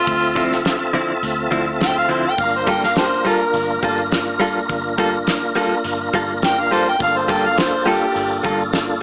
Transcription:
0.00 2.34 C4 medium
0.00 0.63 F4 loud
0.00 2.35 F4 medium
0.00 2.35 A4 medium
0.00 2.34 E5 medium
0.07 1.19 D2 medium
0.07 kick loud
0.07 open hi-hat medium
0.35 0.54 D3 medium
0.35 0.54 F3 medium
0.35 0.55 C4 loud
0.35 0.55 E4 medium
0.35 kick medium
0.35 open hi-hat soft
0.52 snare soft
0.65 snare loud
0.65 open hi-hat medium
0.93 1.12 D3 medium
0.93 1.12 F3 medium
0.93 1.13 C4 loud
0.93 1.13 E4 loud
0.93 open hi-hat medium
1.23 1.50 D2 loud
1.23 open hi-hat medium
1.51 2.35 D2 medium
1.51 1.69 D3 medium
1.51 1.70 F3 medium
1.51 1.70 C4 medium
1.51 1.70 E4 loud
1.51 kick medium
1.51 open hi-hat soft
1.81 1.96 G5 loud
1.81 snare loud
1.81 open hi-hat medium
1.97 2.12 F5 loud
2.09 2.27 D3 medium
2.09 2.28 F3 medium
2.09 2.28 C4 medium
2.09 2.28 E4 medium
2.09 2.24 C5 medium
2.09 open hi-hat soft
2.27 2.42 G5 medium
2.37 3.50 G1 medium
2.37 6.95 A#3 medium
2.37 6.96 D4 medium
2.37 6.97 F4 medium
2.37 6.97 A#4 medium
2.37 2.54 F5 medium
2.37 kick loud
2.37 open hi-hat medium
2.56 2.68 C5 medium
2.67 2.85 G3 medium
2.67 2.86 A#3 medium
2.67 2.86 F4 medium
2.67 2.86 A4 medium
2.67 2.83 G5 medium
2.67 kick medium
2.67 open hi-hat soft
2.83 2.96 F5 medium
2.83 snare soft
2.96 3.06 G4 medium
2.96 3.04 A4 medium
2.96 3.25 C5 medium
2.96 snare loud
2.96 open hi-hat medium
3.25 3.43 G3 medium
3.25 3.43 A#3 medium
3.25 3.44 F4 medium
3.25 3.44 A4 medium
3.25 3.82 A#4 medium
3.25 open hi-hat soft
3.54 3.81 G1 loud
3.54 open hi-hat medium
3.83 4.65 G1 loud
3.83 4.01 G3 medium
3.83 4.01 A#3 medium
3.83 4.01 F4 medium
3.83 4.02 A4 medium
3.83 kick medium
3.83 open hi-hat soft
4.12 snare loud
4.12 open hi-hat medium
4.40 4.58 G3 medium
4.40 4.59 A#3 loud
4.40 4.59 F4 medium
4.40 4.59 A4 loud
4.40 open hi-hat soft
4.69 5.81 G1 medium
4.69 kick loud
4.69 open hi-hat medium
4.98 5.16 G3 medium
4.98 5.17 A#3 medium
4.98 5.17 F4 medium
4.98 5.17 A4 loud
4.98 kick medium
4.98 open hi-hat medium
5.27 snare loud
5.27 open hi-hat medium
5.55 5.74 G3 medium
5.55 5.74 A#3 loud
5.55 5.74 F4 loud
5.55 5.75 A4 medium
5.55 open hi-hat medium
5.84 6.12 G1 medium
5.84 open hi-hat medium
6.13 6.96 G1 medium
6.13 6.32 G3 medium
6.13 6.32 A#3 medium
6.13 6.32 F4 loud
6.13 6.33 A4 medium
6.13 kick medium
6.13 open hi-hat soft
6.42 6.61 G5 loud
6.42 snare loud
6.42 open hi-hat medium
6.60 6.74 F5 medium
6.71 6.89 G3 medium
6.71 6.90 A#3 medium
6.71 6.90 F4 medium
6.71 6.90 A4 loud
6.71 6.86 C5 medium
6.71 open hi-hat soft
6.89 7.00 G5 loud
6.99 8.12 G1 loud
6.99 9.02 A#3 medium
6.99 9.02 D4 medium
6.99 9.02 F4 medium
6.99 9.02 A4 medium
6.99 7.18 F5 loud
6.99 kick loud
6.99 open hi-hat medium
7.17 7.32 C5 medium
7.28 7.47 G3 medium
7.28 7.47 A#3 medium
7.28 7.47 F4 medium
7.28 7.48 A4 medium
7.28 7.47 G5 medium
7.28 kick medium
7.28 open hi-hat soft
7.45 7.60 F5 medium
7.58 7.89 C5 medium
7.58 snare loud
7.58 open hi-hat medium
7.86 8.04 G3 medium
7.86 8.05 A#3 medium
7.86 8.05 F4 medium
7.86 8.43 G4 medium
7.86 8.05 A4 medium
7.86 open hi-hat soft
8.15 8.43 G1 loud
8.15 open hi-hat medium
8.43 9.02 G1 loud
8.43 8.62 G3 medium
8.43 8.62 A#3 medium
8.43 8.63 F4 medium
8.43 8.63 A4 medium
8.43 kick medium
8.43 open hi-hat soft
8.73 snare loud
8.73 open hi-hat medium

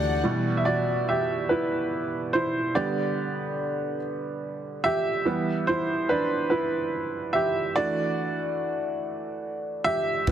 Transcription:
0.00 0.22 D2 medium
0.00 0.23 E3 soft
0.00 0.83 E3 medium
0.00 0.27 F#3 soft
0.00 0.33 A3 medium
0.00 0.27 D4 soft
0.00 0.33 D4 medium
0.00 0.20 F#4 soft
0.00 0.33 F#4 medium
0.00 0.55 G4 medium
0.00 0.61 D5 medium
0.00 0.21 F#5 medium
0.23 2.71 B2 medium
0.23 2.71 E3 soft
0.23 2.71 G3 soft
0.57 0.65 E5 medium
0.65 1.05 F#4 medium
0.65 1.05 D5 medium
1.09 1.19 G4 medium
1.09 1.18 E5 medium
1.49 2.30 E4 medium
1.49 2.36 B4 medium
2.33 2.73 E4 soft
2.33 2.76 C5 medium
2.75 3.97 D3 medium
2.75 3.97 G3 soft
2.75 3.97 B3 medium
2.75 4.81 G4 medium
2.75 4.90 D5 medium
4.84 5.65 G4 medium
4.84 5.64 E5 medium
5.25 5.81 E3 soft
5.25 5.82 G3 soft
5.25 5.82 B3 medium
5.67 6.07 E4 medium
5.67 6.06 C5 medium
6.09 6.49 D4 medium
6.09 6.48 B4 medium
6.50 7.31 E4 medium
6.50 7.30 B4 medium
7.33 7.74 G4 medium
7.33 7.77 E5 medium
7.76 10.23 E3 medium
7.76 10.23 A3 soft
7.76 10.24 D4 medium
7.76 9.82 F#4 medium
7.76 9.91 D5 medium
9.84 10.32 G4 medium
9.84 10.32 E5 medium
10.27 10.32 E1 medium
10.27 10.32 E3 medium
10.27 10.32 E3 soft
10.27 10.32 G3 soft
10.27 10.32 B3 medium
10.27 10.32 G4 medium
10.27 kick medium
10.27 closed hi-hat medium

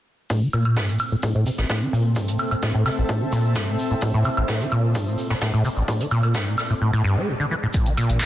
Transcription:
0.30 0.44 A2 medium
0.30 6.81 C4 medium
0.30 kick loud
0.30 shaker medium
0.42 0.48 E3 medium
0.53 0.78 A#2 loud
0.53 high woodblock medium
0.53 shaker medium
0.65 high woodblock medium
0.77 0.90 G2 medium
0.77 6.81 A4 medium
0.77 kick loud
0.77 snare loud
0.77 shaker medium
0.88 0.98 A2 medium
0.88 closed hi-hat soft
0.99 high woodblock medium
0.99 shaker medium
1.12 1.16 A2 medium
1.23 1.33 A2 medium
1.23 kick loud
1.23 shaker medium
1.35 1.44 A2 loud
1.42 5.08 E5 medium
1.46 1.50 C3 medium
1.46 shaker medium
1.58 1.65 A1 medium
1.58 snare soft
1.70 1.83 A2 medium
1.70 kick loud
1.70 snare loud
1.70 shaker medium
1.82 1.88 E3 medium
1.93 2.18 A#2 loud
1.93 shaker medium
2.16 2.30 G2 medium
2.16 kick loud
2.16 shaker medium
2.28 2.37 A2 medium
2.28 closed hi-hat soft
2.39 high woodblock medium
2.39 shaker medium
2.51 2.55 A2 medium
2.51 closed hi-hat soft
2.51 high woodblock medium
2.63 2.72 A2 medium
2.63 kick loud
2.63 snare medium
2.63 shaker medium
2.74 2.84 A2 loud
2.86 2.90 C3 medium
2.86 snare soft
2.86 high woodblock medium
2.86 shaker medium
2.98 3.04 A1 medium
3.09 3.22 A2 medium
3.09 kick loud
3.09 shaker medium
3.21 3.27 E3 medium
3.32 3.57 A#2 medium
3.32 shaker medium
3.55 3.69 G2 medium
3.55 kick loud
3.55 snare loud
3.55 shaker medium
3.67 3.77 A2 medium
3.79 shaker medium
3.91 3.95 A2 medium
4.01 4.12 A2 medium
4.01 kick loud
4.01 shaker medium
4.14 4.23 A2 loud
4.25 4.29 C3 medium
4.25 high woodblock medium
4.25 shaker medium
4.37 4.44 A1 medium
4.37 high woodblock medium
4.48 4.62 A2 medium
4.48 kick loud
4.48 snare loud
4.48 shaker medium
4.61 4.67 E3 medium
4.61 closed hi-hat soft
4.71 4.97 A#2 medium
4.71 high woodblock medium
4.71 shaker medium
4.94 5.09 G2 medium
4.94 6.81 D5 medium
4.94 kick loud
4.94 shaker medium
5.07 5.16 A2 medium
5.18 shaker medium
5.30 5.34 A2 medium
5.30 snare medium
5.41 5.52 A2 medium
5.41 kick loud
5.41 snare loud
5.41 shaker medium
5.54 5.63 A2 medium
5.65 5.69 C3 medium
5.65 shaker medium
5.77 5.83 A1 medium
5.88 6.02 A2 medium
5.88 kick loud
5.88 shaker medium
6.00 6.06 E3 medium
6.00 closed hi-hat soft
6.11 6.36 A#2 loud
6.11 high woodblock medium
6.11 shaker medium
6.23 closed hi-hat soft
6.23 high woodblock medium
6.34 6.48 G2 medium
6.34 kick loud
6.34 snare loud
6.34 shaker medium
6.47 6.56 A2 medium
6.58 snare soft
6.58 high woodblock medium
6.58 shaker medium
6.70 6.74 A2 medium
6.81 6.91 A2 medium
6.93 7.02 A2 loud
7.04 7.18 G2 loud
7.16 7.29 A3 medium
7.28 7.34 A2 medium
7.40 7.46 D3 medium
7.51 7.55 E3 medium
7.63 7.67 A2 medium
7.73 7.88 A2 medium
7.73 kick loud
7.73 closed hi-hat medium
7.73 shaker medium
7.86 7.92 E3 medium
7.86 closed hi-hat soft
7.97 8.22 A#2 loud
7.97 open hi-hat loud
7.97 high woodblock medium
7.97 shaker medium
8.09 8.26 A1 medium
8.09 closed hi-hat soft
8.21 8.26 G2 medium
8.21 kick loud
8.21 snare loud
8.21 clap loud
8.21 closed hi-hat medium
8.21 shaker medium

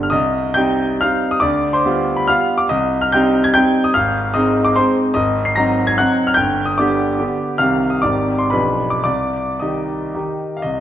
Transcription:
0.00 0.10 G1 medium
0.00 0.14 G3 soft
0.00 0.14 B3 soft
0.00 0.13 D4 soft
0.00 0.11 F6 medium
0.10 0.56 C2 medium
0.10 0.54 D#5 medium
0.10 0.56 D#6 loud
0.54 0.98 G3 medium
0.54 0.98 C4 medium
0.54 0.98 D#4 medium
0.54 0.98 G5 medium
0.54 1.00 G6 loud
1.01 1.40 G3 medium
1.01 1.40 C4 medium
1.01 1.40 D#4 medium
1.01 1.31 F5 medium
1.01 1.32 F6 loud
1.31 1.42 D#6 loud
1.40 1.85 D2 medium
1.40 1.72 D5 medium
1.40 1.74 D6 loud
1.73 2.16 C5 medium
1.73 2.18 C6 medium
1.86 2.25 G3 medium
1.86 2.25 B3 medium
1.86 2.26 F4 medium
2.17 2.28 B5 medium
2.28 2.66 G3 soft
2.28 2.66 B3 medium
2.28 2.67 F4 medium
2.28 2.58 F5 medium
2.28 2.59 F6 loud
2.58 2.69 D6 medium
2.69 3.12 C2 medium
2.69 2.99 D#5 medium
2.69 3.01 D#6 loud
3.01 3.13 F6 loud
3.12 3.52 G3 medium
3.12 3.52 C4 medium
3.12 3.53 D#4 medium
3.12 3.43 G5 medium
3.12 3.45 G6 loud
3.44 3.55 G#6 loud
3.54 3.91 G3 medium
3.54 3.91 C4 medium
3.54 3.91 D#4 medium
3.54 3.82 G5 medium
3.54 3.84 G6 loud
3.84 3.94 D#6 loud
3.94 4.34 G#1 medium
3.94 4.32 F5 medium
3.94 4.34 F6 loud
4.34 4.72 G#3 medium
4.34 4.72 C4 medium
4.34 4.73 D#4 medium
4.34 4.63 D#5 medium
4.34 4.65 D#6 loud
4.65 4.75 D6 loud
4.76 5.13 G#3 medium
4.76 5.13 C4 medium
4.76 5.13 D#4 medium
4.76 4.95 C5 medium
4.76 4.96 C6 loud
5.14 5.56 G#1 medium
5.14 5.44 D#5 medium
5.14 5.46 D#6 loud
5.45 5.57 C7 loud
5.56 5.96 F#3 medium
5.56 5.96 C4 medium
5.56 5.96 D#4 medium
5.56 5.87 A#5 medium
5.56 5.89 A#6 loud
5.87 5.98 G#6 loud
5.98 6.35 F#3 medium
5.98 6.35 C4 medium
5.98 6.35 D#4 medium
5.98 6.26 F#5 medium
5.98 6.28 F#6 loud
6.27 6.38 F6 loud
6.34 6.77 G1 medium
6.34 6.65 G5 medium
6.34 6.66 G6 loud
6.65 6.77 D#6 medium
6.78 7.16 D3 medium
6.78 7.17 B3 medium
6.78 7.17 G4 medium
6.78 7.56 D5 medium
6.78 7.60 D6 medium
7.19 7.56 D3 medium
7.19 7.56 B3 soft
7.19 7.56 G4 medium
7.58 8.03 C2 medium
7.58 8.00 D#3 soft
7.58 8.01 C4 soft
7.58 8.01 G4 soft
7.58 7.90 F5 medium
7.58 7.92 F6 loud
7.90 8.03 D#6 medium
8.02 8.51 G#1 medium
8.02 8.49 D#3 soft
8.02 8.49 C4 soft
8.02 8.50 G4 soft
8.02 8.37 D5 medium
8.02 8.39 D6 medium
8.39 8.52 C6 medium
8.50 9.03 B1 medium
8.50 9.01 F3 soft
8.50 9.01 D4 soft
8.50 9.01 G4 soft
8.50 8.88 B4 medium
8.50 8.90 B5 medium
8.90 9.02 D6 medium
9.04 9.58 C2 medium
9.04 9.56 D5 medium
9.04 9.59 D6 medium
9.60 10.10 D#3 soft
9.60 10.10 D#4 soft
9.60 10.11 G4 medium
9.60 10.35 D#5 soft
9.60 10.39 D#6 medium
10.15 10.59 D#3 soft
10.15 10.59 D#4 soft
10.15 10.60 G4 soft
10.57 10.63 F5 medium
10.62 10.80 C2 medium
10.62 10.80 D#5 medium

